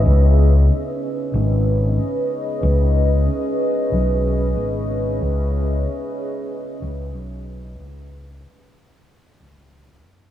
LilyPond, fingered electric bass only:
\new Staff \with { instrumentName = "Fingered electric bass" } { \clef bass \time 4/4 \key cis \minor \tempo 4 = 93 cis,4 r4 gis,,4 r4 | cis,4 r4 b,,4 gis,,4 | cis,4 r4. cis,8 b,,4 | cis,4 r4. cis,4 fis,8 | }